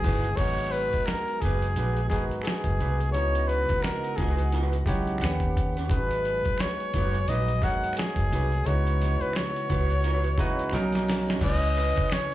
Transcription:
Already playing: C#3 E3 G#3 B3 D#4 E4 F#4 G#4 B4 D#5
0.02 G1 E4 F#4, kick, open hi-hat, shaker
0.06 B4
0.23 closed hi-hat, shaker
0.37 G#1 F#3 G#3 B3 D#4 F#4 G#4 C#5, kick, closed hi-hat, crash, shaker
0.59 closed hi-hat, shaker
0.71 B4, closed hi-hat
0.93 muted fingered electric bass stroke, kick, closed hi-hat, shaker
1.06 A#4, finger snap, muted clean electric guitar stroke, snare, closed hi-hat, shaker
1.26 closed hi-hat, shaker
1.41 F#1 D#4 F#4 G#4 B4, kick, closed hi-hat
1.61 closed hi-hat, shaker
1.74 A#1 D#4 F#4, closed hi-hat, shaker
1.78 B4
1.95 closed hi-hat, shaker
2.09 G#1 G#3 D#4 F#4 G#4 A#4, kick, closed hi-hat, shaker
2.13 B4, snare
2.29 closed hi-hat, shaker
2.42 G#4, finger snap, closed hi-hat, shaker
2.47 snare
2.63 F#1, kick, closed hi-hat, shaker
2.78 C2 D#4 F#4, closed hi-hat, shaker
2.82 B4
2.98 closed hi-hat, shaker
3.12 C#2 C#3 E3 G#3 B3 D#4 E4 F#4 C#5 D#5 F#5, closed hi-hat, shaker
3.35 closed hi-hat, shaker
3.48 B4, closed hi-hat
3.69 muted fingered electric bass stroke, kick, closed hi-hat, shaker
3.82 A#4, finger snap, muted clean electric guitar stroke, snare, closed hi-hat, shaker
4.02 closed hi-hat, shaker
4.17 C#2 E4 F#4 G#4 B4, kick, closed hi-hat
4.37 closed hi-hat, shaker
4.50 E4 F#4, closed hi-hat, shaker
4.55 B4
4.71 closed hi-hat, shaker
4.85 B1 C#3 G#3 D#4 E4 G4 C#5 F#5, kick, closed hi-hat, shaker
4.89 snare
5.05 closed hi-hat, shaker
5.18 D#2 C#3 D#3 B3 C#4 G4 F#5, finger snap, closed hi-hat, shaker
5.23 G4 B4, snare
5.40 kick, closed hi-hat, shaker
5.54 kick, closed hi-hat, shaker
5.74 G4 B4, closed hi-hat, shaker
5.79 C#4
5.88 G#1 F#3 G#3 D#4 F#4 G#4 B4, kick, closed hi-hat, shaker
6.11 closed hi-hat, shaker
6.25 closed hi-hat
6.45 muted fingered electric bass stroke, kick, closed hi-hat, shaker
6.58 C#5, finger snap, muted clean electric guitar stroke, snare, closed hi-hat, shaker
6.78 closed hi-hat, shaker
6.94 F#1 D#4 F#4 B4, kick, closed hi-hat
7.13 closed hi-hat, shaker
7.26 A#1 D#4 D#5, closed hi-hat, shaker
7.31 F#4 B4
7.47 closed hi-hat, shaker
7.60 G#1 G#3 D#4 F#4 A#4 C#5 F#5, kick, closed hi-hat, shaker
7.65 snare
7.81 closed hi-hat, shaker
7.93 finger snap, closed hi-hat, shaker
7.98 G#4, snare
8.15 F#1, kick, closed hi-hat, shaker
8.30 C2 D#4, closed hi-hat, shaker
8.34 F#4 B4
8.50 closed hi-hat, shaker
8.64 C#2 C#3 E3 G#3 D#4 E4 F#4 C#5 D#5, closed hi-hat, shaker
8.68 B4
8.87 closed hi-hat, shaker
9.02 snare, closed hi-hat
9.20 B4, muted fingered electric bass stroke, closed hi-hat, shaker
9.33 C#5, finger snap, muted clean electric guitar stroke, snare, closed hi-hat, shaker
9.54 closed hi-hat, shaker
9.70 C#2 E4 F#4 B4, kick, closed hi-hat
9.88 closed hi-hat, shaker
10.01 E4, closed hi-hat, shaker
10.05 F#4 B4
10.23 closed hi-hat, shaker
10.36 B1 C#3 G#3 D#4 E4 F#4 B4, kick, closed hi-hat, shaker
10.41 snare
10.57 closed hi-hat, shaker
10.70 B1 B2 C#3 F#3 A#3 C#4, finger snap, closed hi-hat, shaker
10.74 D#4 A#4, snare
10.91 closed hi-hat, shaker
10.95 snare
11.06 snare, open hi-hat, shaker
11.27 C#4 D#4 A#4, snare, closed hi-hat, shaker
11.40 C#2 C#3 C#4 E4 B4 D#5, kick, closed hi-hat, crash, shaker
11.63 closed hi-hat, shaker
11.75 E4 B4 D#5, closed hi-hat, shaker
11.97 muted fingered electric bass stroke, kick, closed hi-hat, shaker
12.10 C#5, finger snap, snare, closed hi-hat, shaker
12.30 shaker

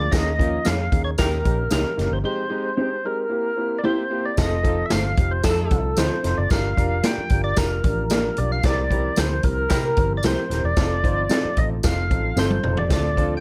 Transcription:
0.00 D5
0.11 D#2 A#3 C#4 D#4 G#4 D#5, kick, snare, closed hi-hat, tambourine, muted conga, low conga
0.38 A#3 C#4 D#4 F4 A#4, kick, closed hi-hat, muted conga, high conga
0.65 F2 A#3 C#4 D#4 G#4 C#5 F5, snare, closed hi-hat, tambourine
0.80 high conga
0.92 D#2 A#3 C#4 D#4 G#4, kick, closed hi-hat, muted conga
1.04 C#5
1.18 D#2 A#3 C#4 D#4 G4 A#4, kick, snare, closed hi-hat, tambourine
1.44 A#1 A#3 C#4 D#4 G4, kick, closed hi-hat, muted conga, high conga
1.70 C#2 A#3 C#4 D#4 G4 A#4 C#5, snare, closed hi-hat, tambourine, muted conga, high conga
1.97 F#1 A#3 C#4 D#4 G4, snare, closed hi-hat, muted conga, high conga, low conga
2.11 G1 C5
2.23 G#3 C4 D#4 G4 C5
2.49 G#3 C4 D#4 G4
2.76 G#3 C4 D#4 G4 C5
3.05 G#3 C4 D#4 G4 A#4
3.29 A#3 C4 E4 G4
3.56 A#3 C4 E4 G4
3.78 D5
3.83 A#3 C4 E4 G4 C5
4.10 A#3 C4 E4 G4
4.25 D5
4.37 F1 C4 D#4 F4 A4 D#5, kick, snare, closed hi-hat, tambourine, low conga
4.63 C4 D#4 F4 A4, kick, closed hi-hat, high conga
4.85 E5
4.90 G1 A3 C4 D#4 F4 A4 C5 F5, snare, closed hi-hat, tambourine, muted conga
5.04 high conga
5.17 F1 C4 D#4 F4 G4, kick, closed hi-hat, muted conga
5.31 C5
5.43 F2 C4 D#4 F4 A4, kick, snare, closed hi-hat, tambourine, muted conga
5.70 C2 C4 D#4 F4 A4, kick, closed hi-hat, high conga
5.97 D2 A3 C4 D#4 F4 A4 C5, snare, closed hi-hat, tambourine, high conga
6.23 F1 C4 D#4 F4 A4, snare, closed hi-hat, high conga, low conga
6.38 F#1 D5
6.49 G1 D4 F4 G4 A#4 F5, kick, snare, closed hi-hat, tambourine, muted conga, low conga
6.76 F1 D4 F4 G4 A#4, kick, closed hi-hat, high conga
7.03 A#3 D4 F4 G4 A#4 D5 G5, snare, closed hi-hat, tambourine, muted conga
7.18 muted fingered electric bass stroke, high conga
7.30 G1 D4 F4 G4 A#4, kick, closed hi-hat, muted conga
7.44 D5
7.56 F1 D4 F4 G4 A#4, kick, snare, closed hi-hat, tambourine
7.84 A1 D4 F4 G4 A#4, kick, closed hi-hat, high conga
8.09 A#3 D4 F4 G4 A#4 D5, snare, closed hi-hat, tambourine, high conga
8.37 B1 D4 F4 G4 A#4 D5, closed hi-hat, muted conga, high conga, low conga
8.52 F5
8.62 C2 C4 E4 G4 A#4 D5, kick, snare, closed hi-hat, tambourine, low conga
8.89 C4 E4 G4 A#4, kick, closed hi-hat, high conga
9.16 D2 A#3 C4 E4 G4 A#4 C5, snare, closed hi-hat, tambourine
9.30 high conga
9.43 C2 C4 E4 G4 A#4, kick, closed hi-hat
9.69 C3 C4 E4 G4 A#4, kick, snare, closed hi-hat, tambourine
9.97 G1 C4 E4 G4 A#4, kick, closed hi-hat, high conga
10.17 D5
10.23 C2 A#3 C4 E4 G4 A#4 C5, snare, closed hi-hat, tambourine, high conga
10.50 D#1 C4 E4 G4 A#4, snare, closed hi-hat, muted conga, high conga, low conga
10.64 E1 D5
10.76 F1 C4 D#4 F4 A4, kick, snare, closed hi-hat, tambourine, muted conga, low conga
11.03 G1 C4 D#4 F4 C5, kick, closed hi-hat, high conga
11.29 C4 D#4 F4 A4 C5, snare, closed hi-hat, tambourine, muted conga
11.43 muted fingered electric bass stroke, high conga
11.57 A1 C4 D#4 F4 A4 D#5, kick, closed hi-hat
11.70 low conga
11.83 F1 C4 D#4 F4 A4 F5, kick, snare, closed hi-hat, tambourine, muted conga
12.10 A1 C4 D#4 F4 A4, kick, closed hi-hat, high conga
12.36 G1 C4 D#4 F4 A4 C5, snare, tambourine, muted conga, high conga
12.51 high tom
12.63 F1 C4 D#4 F4 A4, mid tom, muted conga, high conga, low conga
12.77 D5, floor tom
12.89 D2 C4 D4 F4 A4 D5, kick, snare, closed hi-hat, tambourine, low conga
13.16 C4 D4 F4 A4, kick, closed hi-hat, high conga
13.37 G5

